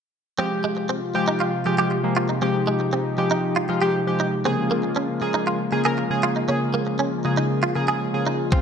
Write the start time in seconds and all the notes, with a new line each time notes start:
0.38 C3 F3 G#3 C4 F4 G4
0.64 G#3
0.77 muted clean electric guitar stroke
0.89 C4
1.15 F3 G#3 G4, muted clean electric guitar stroke
1.28 D#4
1.40 F4
1.66 F3 G#3 G4, muted clean electric guitar stroke
1.78 F3 G#3 G4
1.91 muted clean electric guitar stroke
2.04 F3 G#3 A#3
2.17 F4
2.29 D#4
2.42 F3 G#3 C4 D#4 G4
2.67 G#3
2.80 muted clean electric guitar stroke
2.93 C4
3.18 F3 G#3 G4, muted clean electric guitar stroke
3.31 D#4
3.56 F4
3.69 F3 G#3 F4, muted clean electric guitar stroke
3.81 F3 G#3 G4
4.07 F3 G#3 G4
4.20 D#4
4.45 C#3 F3 A#3 C4 F4 G#4
4.71 A#3
4.83 muted clean electric guitar stroke
4.96 C#4
5.21 C#3 A#3 G#4, muted clean electric guitar stroke
5.34 D#4
5.47 F4
5.72 C#3 A#3 G#4, muted clean electric guitar stroke
5.85 C#3 A#3 G#4 A#4
5.98 muted clean electric guitar stroke
6.10 C#3 A#3 G#4
6.23 F4
6.36 D#4
6.48 C#3 A#3 C#4 G#4
6.74 A#3
6.87 muted clean electric guitar stroke
6.99 C#4
7.25 C#3 A#3 G#4, muted clean electric guitar stroke
7.37 D#4
7.63 F4
7.76 C#3 A#3 G#4, muted clean electric guitar stroke
7.88 C#3 A#3 G#4
8.14 C#3 A#3 G#4
8.27 D#4
8.52 C#3 C4 F4, kick